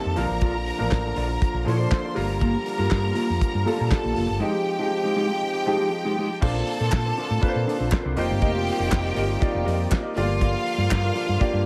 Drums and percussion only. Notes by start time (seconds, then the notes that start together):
0.16 open hi-hat
0.41 kick, closed hi-hat
0.66 open hi-hat
0.91 kick, snare, clap, closed hi-hat
1.16 open hi-hat
1.42 kick, closed hi-hat
1.68 open hi-hat
1.91 kick, snare, clap, closed hi-hat
2.16 open hi-hat
2.41 kick, closed hi-hat
2.66 open hi-hat
2.91 kick, snare, clap, closed hi-hat
3.15 open hi-hat
3.41 kick, closed hi-hat
3.67 open hi-hat
3.91 kick, snare, clap, closed hi-hat
4.16 open hi-hat
6.42 kick, crash
6.67 open hi-hat
6.92 kick, snare, clap
7.17 open hi-hat
7.43 kick, closed hi-hat
7.69 open hi-hat
7.92 kick, snare, clap, closed hi-hat
8.17 open hi-hat
8.42 kick, closed hi-hat
8.67 open hi-hat
8.92 kick, snare, clap, closed hi-hat
9.16 open hi-hat
9.42 kick, closed hi-hat
9.68 open hi-hat
9.91 kick, snare, clap, closed hi-hat
10.17 open hi-hat
10.41 kick, closed hi-hat
10.66 open hi-hat
10.91 kick, snare, clap, closed hi-hat
11.15 open hi-hat
11.41 kick, closed hi-hat